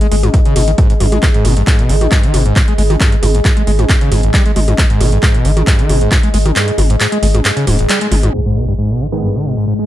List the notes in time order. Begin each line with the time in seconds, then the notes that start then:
Already playing: G#4 D#5 B5
0.01 G#3, closed hi-hat
0.12 G#1 G#3, open hi-hat
0.23 G#2, closed hi-hat, mid tom
0.34 G2, kick, closed hi-hat
0.45 C#3, closed hi-hat
0.56 G#1 B2, open hi-hat, mid tom
0.68 D#3, closed hi-hat
0.78 G#2, kick, closed hi-hat
0.90 G#2, closed hi-hat
1.00 G#1 G2, open hi-hat, mid tom
1.12 G#3, closed hi-hat, mid tom
1.23 G#2, kick, clap, closed hi-hat
1.34 G#2, closed hi-hat
1.45 G#1 B2, open hi-hat, mid tom
1.57 G2, closed hi-hat
1.67 G#2, kick, clap, closed hi-hat
1.79 B2, closed hi-hat
1.89 G#1 D#3, open hi-hat
2.01 D#3, closed hi-hat, mid tom
2.12 G2, kick, clap, closed hi-hat
2.23 D#3, closed hi-hat
2.34 G#1 B2, open hi-hat, mid tom
2.46 G#2, closed hi-hat
2.56 kick, clap, closed hi-hat
2.68 G#3, closed hi-hat
2.78 G#1 G#3, open hi-hat
2.90 D#3, closed hi-hat, mid tom
3.00 G2, kick, clap, closed hi-hat
3.12 G#2, closed hi-hat
3.23 G#1 G2, open hi-hat, mid tom
3.34 G#2, closed hi-hat
3.45 G#2, kick, clap, closed hi-hat
3.57 G#3, closed hi-hat
3.67 G#1 G#3, open hi-hat
3.79 G#2, closed hi-hat, mid tom
3.89 G2, kick, clap, closed hi-hat
4.01 C#3, closed hi-hat
4.12 G#1 G#2, open hi-hat, mid tom
4.23 G#1, closed hi-hat
4.34 G3, kick, clap, closed hi-hat
4.46 G#3, closed hi-hat
4.56 G#1 G#3, open hi-hat, mid tom
4.68 G#2, closed hi-hat, mid tom
4.78 G#2, kick, clap, closed hi-hat
4.90 G#2, closed hi-hat
5.00 G#1 B2, open hi-hat, mid tom
5.12 G2, closed hi-hat
5.23 G#2, kick, clap, closed hi-hat
5.34 B2, closed hi-hat
5.45 G#1 D#3, open hi-hat
5.57 D#3, closed hi-hat, mid tom
5.67 G2, kick, clap, closed hi-hat
5.79 D#3, closed hi-hat
5.89 G#1 B2, open hi-hat, mid tom
6.01 G#2, closed hi-hat
6.12 kick, clap, closed hi-hat
6.23 G#3, closed hi-hat
6.34 G#1 G#3, open hi-hat
6.45 D#3, closed hi-hat, mid tom
6.56 G2, clap, closed hi-hat
6.68 G#2, closed hi-hat
6.78 G#1 G2, open hi-hat, mid tom
6.90 G#2, closed hi-hat
7.00 G#2, clap, closed hi-hat
7.12 G#3, closed hi-hat
7.23 G#1 G#3, open hi-hat
7.34 G#2, closed hi-hat, mid tom
7.45 G2, clap, closed hi-hat
7.57 C#3, closed hi-hat
7.67 D#1 G#2, open hi-hat, mid tom
7.79 G#1, closed hi-hat
7.89 G3, clap, closed hi-hat
8.01 G#3, closed hi-hat
8.12 G#1 G#3, open hi-hat, mid tom
8.23 G#2, closed hi-hat, mid tom
8.34 G#2 G#3 G#4, impact
8.46 G#2
8.56 B2
8.61 B5
8.68 G2
8.78 G#2
8.87 B2 D#5
9.01 D#3
9.12 D#3 G#3 B3
9.23 G2
9.35 D#3
9.45 B2
9.57 G#2
9.67 G#2
9.79 G#3